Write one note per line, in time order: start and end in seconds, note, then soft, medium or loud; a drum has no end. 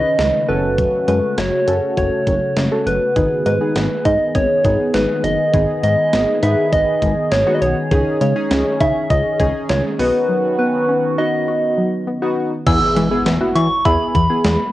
0.00 3.12 C#3 medium
0.00 0.47 D#3 medium
0.00 0.48 C#4 medium
0.00 0.45 D#4 medium
0.00 0.49 D#4 medium
0.00 0.49 B4 medium
0.00 0.50 D#5 loud
0.19 0.31 C#2 loud
0.19 0.35 G#3 medium
0.19 snare loud
0.49 0.86 F#1 loud
0.49 3.13 A3 medium
0.49 1.44 C#4 medium
0.49 3.13 F#4 medium
0.49 1.44 F#4 medium
0.49 1.44 A4 medium
0.49 1.08 B4 loud
0.78 0.94 F#3 medium
0.78 kick loud
0.78 closed hi-hat medium
1.08 1.21 F#2 loud
1.08 1.24 G#3 medium
1.08 1.36 B4 medium
1.08 closed hi-hat medium
1.38 1.50 F#1 medium
1.38 1.53 A3 medium
1.38 1.93 C#5 loud
1.38 snare loud
1.38 closed hi-hat medium
1.67 1.80 F#2 medium
1.67 1.83 C#4 medium
1.67 2.37 C#4 medium
1.67 2.37 F#4 medium
1.67 2.37 A4 medium
1.67 closed hi-hat medium
1.97 2.10 F#1 loud
1.97 2.13 F#4 loud
1.97 2.88 C#5 loud
1.97 kick medium
1.97 closed hi-hat medium
2.27 2.39 F#1 loud
2.27 2.42 F#3 medium
2.27 kick medium
2.27 closed hi-hat medium
2.56 2.69 F#1 loud
2.56 2.72 G#3 medium
2.56 snare loud
2.56 closed hi-hat medium
2.71 3.01 C#4 medium
2.71 3.01 F#4 medium
2.71 3.01 A4 medium
2.86 2.99 F#1 medium
2.86 3.45 B4 loud
2.86 closed hi-hat medium
3.16 3.28 G#1 loud
3.16 9.95 D#3 medium
3.16 3.32 D#3 medium
3.16 7.87 B3 medium
3.16 3.46 B3 medium
3.16 3.46 D#4 medium
3.16 9.95 G#4 medium
3.16 3.46 G#4 medium
3.16 kick loud
3.16 closed hi-hat medium
3.46 3.58 G#2 loud
3.46 3.61 G#3 medium
3.46 4.07 B4 loud
3.46 closed hi-hat medium
3.61 4.30 B3 medium
3.61 4.30 D#4 medium
3.61 4.30 G#4 medium
3.75 3.88 G#1 loud
3.75 3.91 B3 medium
3.75 snare loud
3.75 closed hi-hat medium
4.05 4.18 G#2 loud
4.05 4.21 D#4 medium
4.05 4.34 D#5 loud
4.05 kick medium
4.05 closed hi-hat medium
4.35 4.47 G#1 loud
4.35 4.90 C#5 loud
4.35 4.50 D#5 loud
4.35 kick loud
4.35 closed hi-hat medium
4.64 4.77 G#1 loud
4.64 4.80 D#3 medium
4.64 5.24 B3 medium
4.64 5.24 D#4 medium
4.64 5.24 G#4 medium
4.64 kick medium
4.64 closed hi-hat medium
4.94 5.07 G#1 loud
4.94 5.10 G#3 medium
4.94 5.26 B4 medium
4.94 snare loud
4.94 closed hi-hat medium
5.24 5.36 F#1 loud
5.24 5.83 D#5 loud
5.24 closed hi-hat medium
5.54 5.66 G#1 loud
5.54 5.69 D#3 medium
5.54 6.13 B3 medium
5.54 6.13 D#4 medium
5.54 6.13 G#4 medium
5.54 kick loud
5.54 closed hi-hat medium
5.83 5.96 G#2 medium
5.83 5.99 G#3 medium
5.83 6.39 D#5 loud
5.83 closed hi-hat medium
6.13 6.25 G#1 loud
6.13 6.29 B3 medium
6.13 snare loud
6.13 closed hi-hat medium
6.43 6.55 G#2 loud
6.43 7.12 B3 medium
6.43 7.12 D#4 medium
6.43 6.58 D#4 medium
6.43 7.12 B4 medium
6.43 6.74 E5 loud
6.43 closed hi-hat medium
6.73 6.85 G#1 loud
6.73 6.88 D#5 loud
6.73 7.33 D#5 loud
6.73 kick loud
6.73 closed hi-hat medium
7.02 7.15 G#1 loud
7.02 7.18 D#3 medium
7.02 kick medium
7.02 closed hi-hat medium
7.32 7.44 G#1 loud
7.32 7.47 G#3 medium
7.32 7.54 C#5 medium
7.32 snare loud
7.32 closed hi-hat medium
7.47 7.77 B3 medium
7.47 7.77 D#4 medium
7.47 7.77 F#4 medium
7.55 7.63 D#5 medium
7.62 7.74 B1 medium
7.62 8.20 C#5 loud
7.62 closed hi-hat medium
7.91 8.04 C#2 loud
7.91 8.07 D#3 medium
7.91 9.97 C#4 medium
7.91 8.21 C#4 medium
7.91 8.21 D#4 medium
7.91 8.21 G#4 medium
7.91 kick loud
7.91 closed hi-hat medium
8.21 8.33 C#3 medium
8.21 8.37 G#3 medium
8.21 8.76 C#5 loud
8.21 closed hi-hat medium
8.36 9.05 C#4 medium
8.36 9.05 D#4 medium
8.36 9.05 G#4 medium
8.51 8.63 C#2 loud
8.51 8.66 C#4 medium
8.51 snare loud
8.51 closed hi-hat medium
8.80 8.93 C#3 loud
8.80 8.96 D#4 medium
8.80 9.08 E5 loud
8.80 kick medium
8.80 closed hi-hat medium
9.10 9.23 C#2 loud
9.10 9.26 D#5 loud
9.10 9.66 D#5 loud
9.10 kick medium
9.10 closed hi-hat medium
9.40 9.52 C#2 loud
9.40 9.55 D#3 medium
9.40 9.99 C#4 medium
9.40 9.98 D#4 medium
9.40 9.99 G#4 medium
9.40 kick medium
9.40 closed hi-hat medium
9.69 9.82 C#2 loud
9.69 9.85 G#3 medium
9.69 9.83 C#5 medium
9.69 snare loud
9.69 closed hi-hat medium
9.99 10.12 B1 medium
9.99 12.64 D#3 medium
9.99 10.94 B3 medium
9.99 12.64 B3 medium
9.99 12.64 C#4 medium
9.99 10.94 D#4 medium
9.99 10.94 F#4 medium
9.99 12.64 F#4 medium
9.99 10.55 B4 medium
9.99 open hi-hat medium
10.29 10.44 F#3 medium
10.59 10.74 B3 medium
10.59 11.14 B4 loud
10.88 11.04 C#4 medium
11.18 11.88 B3 medium
11.18 11.88 D#4 medium
11.18 11.34 D#4 medium
11.18 11.88 F#4 medium
11.18 12.33 D#5 loud
11.48 11.63 F#4 loud
11.77 11.93 F#3 medium
12.07 12.23 B3 medium
12.22 12.52 B3 medium
12.22 12.52 D#4 medium
12.22 12.52 F#4 loud
12.66 12.79 E2 loud
12.66 12.82 E3 medium
12.66 12.96 B3 medium
12.66 12.96 E4 medium
12.66 12.96 G#4 medium
12.66 13.22 E6 loud
12.66 kick loud
12.66 closed hi-hat medium
12.66 crash loud
12.66 impact medium
12.96 13.09 E3 loud
12.96 13.12 G#3 medium
12.96 closed hi-hat medium
13.11 13.31 B3 medium
13.11 13.31 E4 medium
13.11 13.31 G#4 medium
13.26 13.38 E2 loud
13.26 13.41 B3 medium
13.26 snare loud
13.26 closed hi-hat medium
13.41 13.71 B3 medium
13.41 13.71 E4 medium
13.41 13.71 F#4 medium
13.56 13.68 E3 loud
13.56 13.71 E4 medium
13.56 13.87 C#6 loud
13.56 closed hi-hat medium
13.85 13.98 E2 loud
13.85 14.15 B3 medium
13.85 14.15 E4 medium
13.85 14.15 G#4 medium
13.85 14.01 E5 loud
13.85 14.15 B5 loud
13.85 kick loud
13.85 closed hi-hat medium
14.15 14.27 E2 loud
14.15 14.31 E3 medium
14.15 14.71 B5 medium
14.15 kick medium
14.15 closed hi-hat medium
14.30 14.60 B3 medium
14.30 14.60 E4 medium
14.30 14.60 G#4 medium
14.45 14.57 E2 loud
14.45 14.60 G#3 medium
14.45 snare loud
14.45 closed hi-hat medium